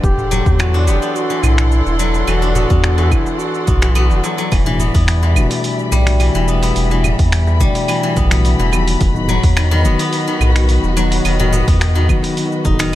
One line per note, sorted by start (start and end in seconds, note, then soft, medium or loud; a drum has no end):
0.00 0.42 E1 loud
0.00 0.87 B3 medium
0.00 0.74 D4 medium
0.00 0.60 G4 loud
0.00 4.48 A4 medium
0.00 8.97 D5 medium
0.00 4.48 F#5 medium
0.00 4.48 C6 medium
0.00 kick loud
0.00 cabasa soft
0.18 darbuka dum medium
0.18 cabasa soft
0.31 1.98 F#3 loud
0.31 darbuka dum loud
0.31 cabasa medium
0.46 0.89 E2 medium
0.46 kick loud
0.46 cabasa soft
0.59 1.29 E3 medium
0.59 0.86 F#4 loud
0.59 finger snap medium
0.59 cabasa soft
0.59 claves medium
0.74 2.42 D4 medium
0.74 darbuka ka medium
0.74 darbuka tek medium
0.74 cabasa soft
0.86 0.99 E1 loud
0.86 1.02 B3 medium
0.86 1.16 G4 loud
0.86 cabasa medium
1.02 2.55 B3 medium
1.02 darbuka ka soft
1.02 darbuka tek medium
1.02 cabasa soft
1.15 1.44 F#4 loud
1.15 cabasa soft
1.30 2.26 E3 medium
1.30 cabasa soft
1.43 1.82 B1 loud
1.43 1.98 E4 medium
1.43 darbuka tek medium
1.43 darbuka dum medium
1.43 cabasa medium
1.43 claves medium
1.58 finger snap medium
1.58 cabasa soft
1.72 cabasa soft
1.86 2.24 E1 medium
1.86 darbuka ka medium
1.86 cabasa soft
1.98 4.22 F#3 medium
1.98 2.28 E4 medium
1.98 cabasa medium
2.14 darbuka ka soft
2.14 darbuka tek medium
2.14 cabasa soft
2.27 2.66 E1 loud
2.27 2.97 E3 medium
2.27 2.54 F#4 loud
2.27 cabasa soft
2.27 claves medium
2.42 5.22 D4 medium
2.42 cabasa soft
2.54 2.70 B3 medium
2.54 3.13 F#4 loud
2.54 darbuka dum loud
2.54 cabasa medium
2.70 3.13 E2 medium
2.70 3.67 B3 medium
2.70 kick loud
2.70 cabasa soft
2.84 finger snap medium
2.84 cabasa soft
2.98 3.81 E3 medium
2.98 darbuka ka medium
2.98 darbuka tek medium
2.98 cabasa soft
3.11 3.24 E1 loud
3.11 3.41 E4 medium
3.11 kick medium
3.11 cabasa medium
3.11 claves medium
3.26 darbuka ka soft
3.26 darbuka tek medium
3.26 cabasa soft
3.39 4.24 F#4 medium
3.39 cabasa soft
3.54 cabasa soft
3.67 4.12 B1 loud
3.67 3.95 B3 medium
3.67 kick loud
3.67 darbuka ka soft
3.67 darbuka dum medium
3.67 cabasa medium
3.82 4.50 E3 medium
3.82 finger snap medium
3.82 darbuka tek soft
3.82 cabasa soft
3.95 4.79 B3 loud
3.95 cabasa soft
3.95 claves medium
4.10 4.21 E1 loud
4.10 darbuka tek medium
4.10 cabasa soft
4.24 4.37 F#3 medium
4.24 darbuka tek medium
4.24 cabasa medium
4.38 4.57 F#3 medium
4.38 cabasa soft
4.52 4.90 E1 loud
4.52 4.65 E3 medium
4.52 8.97 G3 medium
4.52 8.97 E5 medium
4.52 12.95 B5 medium
4.52 kick loud
4.52 open hi-hat soft
4.52 cabasa soft
4.52 claves medium
4.66 4.81 B2 medium
4.66 5.21 E3 loud
4.66 4.82 E3 medium
4.66 4.82 A3 medium
4.66 4.82 D4 medium
4.66 4.82 F#4 medium
4.66 darbuka dum medium
4.66 cabasa soft
4.80 4.94 B3 medium
4.80 darbuka dum medium
4.80 cabasa medium
4.94 5.37 E2 medium
4.94 6.48 B3 medium
4.94 kick medium
4.94 open hi-hat soft
4.94 cabasa soft
5.08 finger snap medium
5.08 open hi-hat soft
5.08 cabasa soft
5.23 6.19 E3 medium
5.23 darbuka ka medium
5.23 darbuka tek medium
5.23 cabasa soft
5.34 5.48 E1 loud
5.34 6.02 B2 medium
5.34 6.03 E3 medium
5.34 6.03 A3 medium
5.34 6.04 D4 medium
5.34 cabasa medium
5.34 claves medium
5.38 6.04 F#4 loud
5.50 open hi-hat medium
5.50 darbuka ka soft
5.50 darbuka tek medium
5.50 cabasa soft
5.64 open hi-hat soft
5.64 cabasa soft
5.79 cabasa soft
5.92 6.30 B1 loud
5.92 7.59 G3 loud
5.92 darbuka tek medium
5.92 darbuka dum medium
5.92 cabasa medium
6.05 6.44 B2 medium
6.05 6.45 E3 medium
6.05 6.45 A3 medium
6.05 6.45 D4 medium
6.05 6.45 F#4 medium
6.05 finger snap medium
6.05 open hi-hat medium
6.05 cabasa soft
6.20 6.34 E3 medium
6.20 open hi-hat soft
6.20 cabasa soft
6.20 claves medium
6.35 6.72 E1 medium
6.35 6.90 E3 loud
6.35 darbuka ka medium
6.35 cabasa soft
6.47 6.87 B2 medium
6.47 6.87 E3 medium
6.47 6.87 A3 medium
6.47 6.63 B3 medium
6.47 6.88 D4 medium
6.47 6.88 F#4 medium
6.47 darbuka ka soft
6.47 cabasa medium
6.62 8.16 B3 medium
6.62 open hi-hat medium
6.62 darbuka ka soft
6.62 darbuka tek medium
6.62 cabasa soft
6.76 7.14 E1 medium
6.76 open hi-hat soft
6.76 cabasa soft
6.90 7.06 B2 medium
6.90 7.06 E3 medium
6.90 7.88 E3 medium
6.90 7.06 A3 medium
6.90 7.06 D4 medium
6.90 7.07 F#4 medium
6.90 cabasa soft
7.04 darbuka dum medium
7.04 cabasa medium
7.04 claves medium
7.19 7.62 E2 medium
7.19 kick loud
7.19 open hi-hat medium
7.19 cabasa soft
7.32 finger snap medium
7.32 open hi-hat soft
7.32 cabasa soft
7.47 darbuka ka medium
7.47 darbuka tek medium
7.47 cabasa soft
7.58 7.72 E1 loud
7.58 8.27 B2 medium
7.58 8.27 E3 medium
7.58 9.06 G3 loud
7.58 8.28 A3 medium
7.58 8.28 D4 medium
7.58 kick medium
7.58 cabasa medium
7.62 8.29 F#4 loud
7.75 open hi-hat medium
7.75 darbuka ka medium
7.75 darbuka tek medium
7.75 cabasa soft
7.88 8.02 E3 medium
7.88 open hi-hat soft
7.88 cabasa soft
7.88 claves medium
8.03 8.58 E3 loud
8.03 cabasa soft
8.17 8.55 B1 loud
8.17 8.31 B3 medium
8.17 kick loud
8.17 darbuka ka soft
8.17 darbuka dum medium
8.17 cabasa medium
8.31 8.69 B2 medium
8.31 8.69 E3 medium
8.31 8.70 A3 medium
8.31 9.85 B3 medium
8.31 8.70 D4 medium
8.31 8.70 F#4 medium
8.31 finger snap medium
8.31 open hi-hat medium
8.31 darbuka tek soft
8.31 cabasa soft
8.45 open hi-hat soft
8.45 cabasa soft
8.59 8.96 E1 medium
8.59 9.06 E3 medium
8.59 darbuka tek medium
8.59 cabasa soft
8.72 9.12 D#3 medium
8.72 9.12 F#3 medium
8.72 9.12 B3 medium
8.72 9.12 D#4 medium
8.72 9.13 F#4 medium
8.72 darbuka tek medium
8.72 cabasa medium
8.72 claves medium
8.88 open hi-hat medium
8.88 cabasa soft
9.01 9.39 E1 loud
9.01 12.95 F#4 medium
9.01 12.95 B4 medium
9.01 12.95 D#5 medium
9.01 kick loud
9.01 open hi-hat soft
9.01 cabasa soft
9.14 9.30 D#3 medium
9.14 9.30 F#3 medium
9.14 9.31 B3 medium
9.14 9.31 D#4 medium
9.14 9.31 F#4 medium
9.14 darbuka dum medium
9.14 cabasa soft
9.28 9.62 F#3 loud
9.28 darbuka dum loud
9.28 cabasa medium
9.43 9.86 E2 medium
9.43 kick medium
9.43 open hi-hat medium
9.43 cabasa soft
9.57 9.70 D#3 medium
9.57 finger snap medium
9.57 open hi-hat soft
9.57 cabasa soft
9.57 claves medium
9.71 10.26 D#3 loud
9.71 darbuka ka medium
9.71 darbuka tek medium
9.71 cabasa soft
9.83 9.96 E1 loud
9.83 10.51 D#3 loud
9.83 10.52 F#3 medium
9.83 10.52 B3 medium
9.83 9.99 B3 medium
9.83 10.53 D#4 medium
9.83 10.53 F#4 loud
9.83 cabasa medium
9.99 11.52 B3 medium
9.99 open hi-hat medium
9.99 darbuka ka soft
9.99 darbuka tek medium
9.99 cabasa soft
10.13 open hi-hat soft
10.13 cabasa soft
10.28 11.24 D#3 medium
10.28 cabasa soft
10.40 10.79 B1 loud
10.40 darbuka tek medium
10.40 darbuka dum medium
10.40 cabasa medium
10.40 claves medium
10.55 10.93 D#3 medium
10.55 10.94 F#3 medium
10.55 10.94 B3 medium
10.55 10.94 D#4 medium
10.55 10.94 F#4 medium
10.55 finger snap medium
10.55 open hi-hat medium
10.55 cabasa soft
10.69 open hi-hat soft
10.69 cabasa soft
10.83 11.21 E1 medium
10.83 darbuka ka medium
10.83 cabasa soft
10.96 11.36 D#3 medium
10.96 11.36 F#3 medium
10.96 11.30 F#3 loud
10.96 11.36 B3 medium
10.96 11.36 D#4 medium
10.96 11.37 F#4 medium
10.96 darbuka ka soft
10.96 cabasa medium
11.11 open hi-hat medium
11.11 darbuka ka soft
11.11 darbuka tek medium
11.11 cabasa soft
11.24 11.63 E1 loud
11.24 11.38 D#3 medium
11.24 open hi-hat soft
11.24 cabasa soft
11.24 claves medium
11.39 11.54 D#3 medium
11.39 11.94 D#3 loud
11.39 11.55 F#3 medium
11.39 11.55 B3 medium
11.39 11.55 D#4 medium
11.39 11.55 F#4 medium
11.39 darbuka dum medium
11.39 cabasa soft
11.53 11.67 B3 medium
11.53 darbuka dum medium
11.53 cabasa medium
11.68 12.11 E2 medium
11.68 12.93 B3 medium
11.68 kick loud
11.68 open hi-hat medium
11.68 cabasa soft
11.81 finger snap medium
11.81 open hi-hat soft
11.81 cabasa soft
11.95 12.78 D#3 medium
11.95 darbuka ka medium
11.95 darbuka tek medium
11.95 cabasa soft
12.08 12.21 E1 loud
12.08 12.62 D#3 medium
12.08 12.62 F#3 medium
12.08 12.62 B3 medium
12.08 12.63 D#4 medium
12.08 12.63 F#4 loud
12.08 kick medium
12.08 cabasa medium
12.08 claves medium
12.23 open hi-hat medium
12.23 darbuka ka medium
12.23 darbuka tek medium
12.23 cabasa soft
12.37 open hi-hat soft
12.37 cabasa soft
12.52 cabasa soft
12.64 12.95 E1 medium
12.64 12.90 D#3 medium
12.64 12.90 F#3 medium
12.64 12.90 B3 medium
12.64 12.95 D#4 medium
12.64 12.91 D#4 medium
12.64 12.91 F#4 medium
12.64 kick loud
12.64 darbuka ka soft
12.64 darbuka dum medium
12.64 cabasa medium
12.79 12.95 D#3 loud
12.79 finger snap medium
12.79 open hi-hat medium
12.79 darbuka tek soft
12.79 cabasa soft